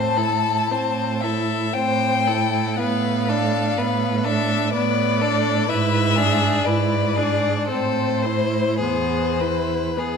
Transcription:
Already playing: cello A2, viola C4, violin C5 A5
0.17 viola E4, violin A4
0.70 cello A2, viola C4, violin C5
1.21 viola E4, violin A4 E5
1.74 cello A2, viola C4, violin C5 G5
2.27 viola E4, violin A4
2.78 cello A2, viola B3, violin B4 F5
3.28 viola D4, violin A4
3.78 cello A2, viola B3, violin B4
4.24 viola D4, violin A4 E5
4.73 cello A2, viola B3, violin B4 D5
5.21 viola D4, violin A4
5.69 cello G#2, viola E4, violin B4 E5
6.16 viola D4, violin G#4
6.64 cello G#2, viola E4, violin B4 D5
7.16 viola D4, violin G#4
7.68 cello A2, viola C4, violin A4 C5
8.22 viola E4, violin C5
8.79 cello E2, viola B3, violin G#4 C5
9.40 viola E4, violin B4
9.97 cello E2, viola B3, violin G#4 B4

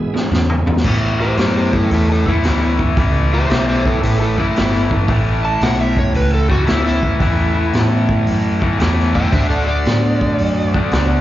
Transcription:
Already playing: overdriven electric guitar E2 B2, fingered electric bass G#2, tonewheel organ G#3 B3 E4 G#4
0.14 overdriven electric guitar E2 B2, snare
0.31 fingered electric bass E2, overdriven electric guitar E2 C#3, snare
0.50 mid tom
0.67 overdriven electric guitar E2 C#3, floor tom
0.77 snare
0.84 overdriven electric guitar A2 E3 A3, fingered electric bass A2, tonewheel organ A3 C#4 E4 A4, kick, crash
1.20 electric slide guitar G4 C5
1.37 fingered electric bass F#2, electric slide guitar G4 C5, snare, open hi-hat
1.57 electric slide guitar G4 C5
1.73 electric slide guitar E4 A4, kick
1.91 fingered electric bass E2, electric slide guitar E4 A4, open hi-hat
2.12 electric slide guitar E4 A4
2.26 overdriven electric guitar A2 E3 A3, electric slide guitar E4, kick
2.43 fingered electric bass D2, overdriven electric guitar A2 E3 A3, snare, open hi-hat
2.79 kick
2.97 fingered electric bass C#2, overdriven electric guitar A2 E3 A3, kick, open hi-hat
3.34 electric slide guitar G4 C5
3.50 fingered electric bass B1, electric slide guitar G4 C5, snare, open hi-hat
3.69 electric slide guitar G4 C5
3.86 electric slide guitar E4 A4, kick
4.03 fingered electric bass A1, electric slide guitar E4 A4, open hi-hat
4.21 electric slide guitar E4 A4
4.38 overdriven electric guitar A2 E3 A3, electric slide guitar E4, kick
4.54 fingered electric bass G1, overdriven electric guitar A2 E3 A3, snare, open hi-hat
4.75 snare
4.91 kick
5.07 fingered electric bass A1, overdriven electric guitar A2 E3 A3, tonewheel organ A3 C#4 E4, kick, open hi-hat
5.45 electric slide guitar A5
5.61 fingered electric bass B1, electric slide guitar F#5, snare, open hi-hat
5.81 electric slide guitar E5
5.97 electric slide guitar C#5, kick
6.14 fingered electric bass C#2, electric slide guitar B4, open hi-hat
6.34 electric slide guitar A4
6.49 overdriven electric guitar A2 E3 A3, electric slide guitar F#4, kick
6.67 fingered electric bass D2, overdriven electric guitar A2 E3 A3, electric slide guitar E4, snare, open hi-hat
6.86 electric slide guitar E4, snare
7.03 kick
7.20 fingered electric bass E2, overdriven electric guitar A2 E3 A3, kick, open hi-hat
7.73 fingered electric bass A2, snare, open hi-hat
8.09 kick
8.26 fingered electric bass F#2, open hi-hat
8.61 overdriven electric guitar A2 E3 A3, kick
8.79 fingered electric bass E2, overdriven electric guitar A2 E3 A3, snare, open hi-hat
9.00 snare
9.15 electric slide guitar E5 G5, kick
9.31 fingered electric bass D2, overdriven electric guitar D3 A3 D4, tonewheel organ A3 D4 F#4 A4, electric slide guitar C5 E5, kick, open hi-hat
9.50 electric slide guitar A4 D5
9.67 electric slide guitar D5
9.85 fingered electric bass A2, snare, open hi-hat
10.21 kick
10.38 fingered electric bass F#2, open hi-hat
10.74 overdriven electric guitar D3 A3 D4, kick
10.91 fingered electric bass C#2, overdriven electric guitar D3 A3 D4, snare, open hi-hat

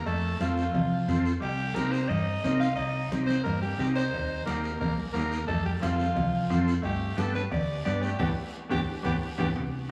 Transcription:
0.06 fingered electric bass F2, clean electric guitar A3, alto saxophone A4, cowbell, high conga, long guiro
0.39 fingered electric bass F2, clean electric guitar F3, transistor combo organ C4 F4 A4, alto saxophone F4, cowbell, high conga, short guiro
0.58 short guiro
0.74 fingered electric bass C2, cowbell, high conga, low conga, long guiro
1.08 fingered electric bass F2, transistor combo organ C4 F4 A4, cowbell, high conga, low conga, short guiro
1.26 short guiro
1.40 fingered electric bass C2, clean electric guitar G3, alto saxophone G4, cowbell, high conga, long guiro
1.74 fingered electric bass C2, clean electric guitar A#3, transistor combo organ C4 D#4 G4, alto saxophone A#4, cowbell, high conga, short guiro
1.92 clean electric guitar C4, alto saxophone C5, short guiro
2.09 fingered electric bass G2, clean electric guitar D#4, alto saxophone D#5, cowbell, high conga, low conga, long guiro
2.43 fingered electric bass C2, transistor combo organ C4 D#4 A#4, cowbell, high conga, low timbale, short guiro
2.60 clean electric guitar F4, alto saxophone F5, short guiro
2.76 fingered electric bass C2, clean electric guitar D#4, alto saxophone D#5, cowbell, high conga, long guiro
3.11 fingered electric bass C2, transistor combo organ C4 D#4 G4, cowbell, high conga, short guiro
3.27 clean electric guitar C4, alto saxophone C5, high conga, short guiro
3.44 fingered electric bass G2, clean electric guitar A#3, alto saxophone A#4, cowbell, high conga, low conga, long guiro
3.61 clean electric guitar G3, alto saxophone G4, high conga
3.78 fingered electric bass C2, clean electric guitar G3, transistor combo organ C4 D#4 G4, alto saxophone G4, cowbell, high conga, short guiro
3.94 clean electric guitar D#4, alto saxophone C5, short guiro
4.13 fingered electric bass D#2, bombo low, cowbell, high conga, long guiro
4.46 fingered electric bass D#2, clean electric guitar A#3, transistor combo organ A#3 D#4 G4, alto saxophone A#4, bombo rim, cowbell, high conga, short guiro
4.64 short guiro
4.79 fingered electric bass A#1, clean electric guitar A#3, alto saxophone A#4, bombo low, cowbell, high conga, low conga, long guiro
4.98 high conga
5.13 fingered electric bass D#2, clean electric guitar A#3, transistor combo organ A#3 D#4 G4, alto saxophone A#4, bombo rim, cowbell, high conga, low timbale, short guiro
5.32 short guiro
5.47 fingered electric bass F2, clean electric guitar A3, alto saxophone A4, bombo low, cowbell, high conga, low conga, long guiro
5.64 clean electric guitar G3, alto saxophone G4
5.80 fingered electric bass F2, clean electric guitar F3, transistor combo organ C4 F4 A4, alto saxophone F4, bombo rim, cowbell, high conga, short guiro
5.99 high conga, short guiro
6.16 fingered electric bass C2, bombo low, cowbell, high conga, low conga, long guiro
6.50 fingered electric bass F2, transistor combo organ C4 F4 A4, bombo rim, cowbell, high conga, low conga, short guiro
6.68 short guiro
6.82 fingered electric bass G2, clean electric guitar A3, alto saxophone G4, bombo low, cowbell, high conga, long guiro
7.17 fingered electric bass G2, transistor combo organ B3 D4 G4, clean electric guitar D4, alto saxophone A4, bombo rim, cowbell, high conga, short guiro
7.35 clean electric guitar D4, alto saxophone B4, high conga, short guiro
7.51 fingered electric bass D2, clean electric guitar G4, alto saxophone D5, bombo low, bombo rim, cowbell, high conga, low conga, long guiro
7.85 fingered electric bass G2, transistor combo organ B3 D4 G4, clean electric guitar G4, alto saxophone D5, bombo rim, cowbell, high conga, short guiro
8.02 clean electric guitar A3, alto saxophone G4, short guiro
8.19 fingered electric bass G1, clean electric guitar A3 B3 D4, transistor combo organ B3 D4 G4, alto saxophone G4, bombo low, low conga, high timbale, long guiro
8.70 fingered electric bass G1, clean electric guitar A3 B3 D4, transistor combo organ B3 D4 G4, alto saxophone G4, bombo low, low conga, high timbale, long guiro
9.03 fingered electric bass G1, clean electric guitar A3 B3 D4, transistor combo organ B3 D4 G4, alto saxophone G4, bombo low, low conga, high timbale, long guiro
9.38 fingered electric bass G1, clean electric guitar A3 B3 D4, transistor combo organ B3 D4 G4, alto saxophone G4, bombo low, low conga, high timbale, long guiro
9.56 fingered electric bass C2, bombo low, bombo rim, low conga, high timbale, long guiro

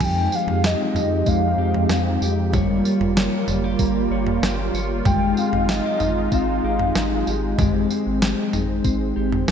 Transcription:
Already playing: clean electric guitar D#4
0.00 analog synth bass F2, clean electric guitar F3 G4, analog synth pad F3 G#3 C4 D#4 G4, kick, floor tom, crash, tambourine
0.04 soft synth lead G5
0.32 clean electric guitar G#3, soft synth lead F5, tambourine
0.47 analog synth bass F2, floor tom
0.64 clean electric guitar G4, soft synth lead D#5, snare, tambourine
0.95 analog synth bass F2, clean electric guitar D#4, floor tom, tambourine
1.26 analog synth bass F2, clean electric guitar G#3, soft synth lead F5, kick, tambourine
1.58 analog synth bass F2, clean electric guitar G4
1.74 floor tom
1.89 analog synth bass F2, clean electric guitar D#4, snare, tambourine
2.22 analog synth bass F2, clean electric guitar G4, tambourine
2.52 analog synth bass G1, analog synth pad G3 A#3 F4, clean electric guitar G3 C#5, kick, floor tom, tambourine
2.85 clean electric guitar F4, tambourine
3.00 analog synth bass G1, floor tom
3.16 clean electric guitar C#5, snare, tambourine
3.48 analog synth bass G1, clean electric guitar F4, floor tom, tambourine
3.64 clean electric guitar G4
3.79 analog synth bass G1, clean electric guitar A#3, kick, tambourine
4.10 analog synth bass G1, clean electric guitar C#5
4.27 floor tom
4.42 analog synth bass G1, clean electric guitar G4, snare, tambourine
4.74 analog synth bass G1, clean electric guitar C#5, tambourine
5.05 analog synth bass G#1, analog synth pad G#3 D#4, clean electric guitar G#3 G4, soft synth lead G5, kick, floor tom, tambourine
5.37 clean electric guitar C4, soft synth lead F5, tambourine
5.53 analog synth bass G#1, floor tom
5.69 clean electric guitar F4, soft synth lead D#5, snare, tambourine
5.85 clean electric guitar G4
6.00 analog synth bass G#1, clean electric guitar D#4, floor tom, tambourine
6.32 analog synth bass G#1, clean electric guitar C4, soft synth lead F5, kick, tambourine
6.64 analog synth bass G#1, clean electric guitar G4
6.79 floor tom
6.95 analog synth bass G#1, clean electric guitar D#4, snare, tambourine
7.27 analog synth bass G#1, clean electric guitar G4, tambourine
7.58 analog synth bass G#1, clean electric guitar G#3 G4, analog synth pad C4, kick, floor tom, tambourine
7.90 clean electric guitar C4, tambourine
8.07 analog synth bass G#1
8.22 clean electric guitar G4, snare, tambourine
8.53 analog synth bass G#1, clean electric guitar D#4, floor tom, tambourine
8.84 analog synth bass G#1, clean electric guitar C4, kick, tambourine
9.16 analog synth bass G#1, clean electric guitar G4
9.32 floor tom
9.48 analog synth bass G#1, clean electric guitar D#4, snare, tambourine

